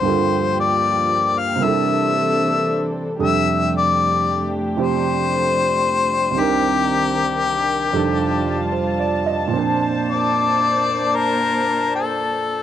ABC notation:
X:1
M:4/4
L:1/8
Q:"Swing" 1/4=76
K:F
V:1 name="Harmonica"
c d2 f e3 z | e d2 z c4 | G6 z2 | z d3 B2 A2 |]
V:2 name="String section"
[F,B,G]4 [E,CDA]4 | [F,A,DG]8 | [_E,CDB]4 [G,Fa]4 | [B,Dc]8 |]
V:3 name="Grand piano"
z8 | z8 | z6 (3c d _e | z8 |]
V:4 name="Grand piano"
[G,,D,B,FA]4 [C,G,B,DEA]4 | [F,,C,G,DA]4 [C,F,CG]4 | [C,,C,_E,DB]4 [F,,C,E,DGA]4 | [B,,F,CDc]8 |]